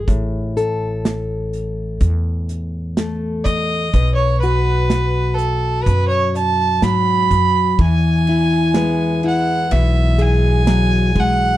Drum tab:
RD |--------|--------|xxxxxxxx|
HH |xxxxxxxx|xxxxxxxx|--------|
SD |--o---o-|--o---o-|--o---o-|
BD |o---o--o|o---o--o|o------o|